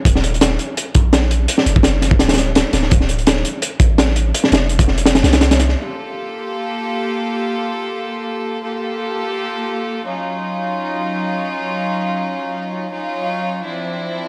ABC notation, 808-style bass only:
X:1
M:4/4
L:1/8
Q:1/4=168
K:Gm
V:1 name="808-style bass" clef=bass
E,,,3 z2 B,,,3 | z _G,,,3 D,,,2 z D,,, | D,,,3 z2 A,,,3 | z F,,,4 C,,3 |
z8 | z8 | z8 | z8 |
z8 | z8 |]